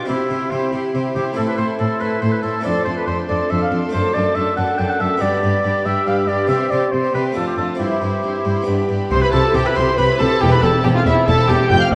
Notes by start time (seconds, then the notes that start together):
0.05 C3 C4 E4 G4 C6
0.29 C3 E4 G4 C6
0.51 C3 E4 G4 C5 C6
0.72 C3 E4 G4 C6
0.94 C3 E4 G4 C6
1.15 C3 E4 G4 C6
1.33 A3 C4 E4 A4
1.37 A2 E4 C6
1.48 B4
1.58 A2 E4 A4 C5 C6
1.79 A2 E4 A4 C6
2.01 A2 E4 A4 B4 C6
2.21 A2 E4 A4 C5 C6
2.32 B4
2.42 A2 E4 A4 C6
2.61 A3 C4 A4 D5
2.65 F2 D4 A4 C6
2.85 F2 D4 A4 C5 C6
2.97 B4
3.07 F2 D4 A4 C5 C6
3.29 F2 D4 A4 D5 C6
3.50 F2 D4 A4 E5 C6
3.62 F5
3.72 F2 D4 A4 C6
3.89 A3 D4 A4
3.93 F#2 D4 A4 C5 A5
4.14 F#2 D4 A4 D5 A5
4.35 F#2 D4 A4 E5 A5
4.57 F#2 D4 A4 F#5 A5
4.78 F#2 D4 A4 G5 A5
4.90 F#5
5.00 F#2 D4 A4 E5 A5
5.17 B3 D4 G4 B5
5.21 G2 D4 G4 D5
5.42 G2 D4 G4 B5
5.63 G2 D4 G4 B5
5.85 G2 D4 G4 E5 B5
6.06 G2 D4 G4 F5 B5
6.18 E5
6.28 G2 D4 G4 D5 B5
6.47 C3 C4 G4 E5 C6
6.70 C3 C4 G4 D5 C6
6.92 C3 C4 G4 C5 C6
7.14 C3 C4 G4 B4 C6
7.32 F2 A3 D4 F4 A5
7.36 F2 D4 F4 A4
7.47 G4
7.57 F2 D4 F4 A4 A5
7.75 C4 E4
7.80 G2 E4 G4 C6
8.02 G2 E4 C6
8.23 G2 E4 C6
8.45 G2 E4 C6
8.62 B3 D4 G4
8.67 G2 D4 G4 B5
8.89 G2 D4 G4 B5
9.11 C2 C3 G4 C5 C6
9.22 E4 B4 B5
9.33 C2 C3 E4 G4 A4 A5
9.45 E4
9.54 C2 C3 G4 G5
9.66 E4 B4 B5
9.76 C2 C3 E4 G4 C5 C6
9.88 E4
9.98 C2 C3 C4 G4 B4 B5
10.10 E4
10.19 C2 C3 E4 G4 A4 A5
10.32 E4
10.41 E1 E2 E4 G4 G5
10.52 C4 B4 B5
10.62 E1 E2 E4 G4 A4 A5
10.75 C4
10.84 E1 E2 E4 G4 C5 G5
10.95 C4 F4 F5
11.06 E1 E2 E4 G4 E5
11.17 C4
11.27 E1 E2 E4 A4 A5
11.38 C4
11.49 E1 E2 E4 G4 G5
11.60 C4
11.70 F1 F2 A3 G5 G6
11.81 C4 F5 F6
11.92 F1 A3 D5